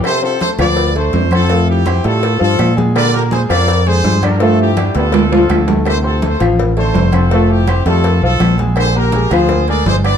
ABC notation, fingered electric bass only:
X:1
M:4/4
L:1/8
Q:1/4=165
K:Ddor
V:1 name="Fingered electric bass" clef=bass
z3 D,,3 F,,2- | F,,3 A,,2 G,, _B,,2- | _B,,3 F,,3 G,,2- | G,,3 D,,3 D,,2- |
D,,3 A,,,3 F,,,2- | F,,,3 F,,2 B,,, _B,,,2- | _B,,,3 D,,3 G,,,2 |]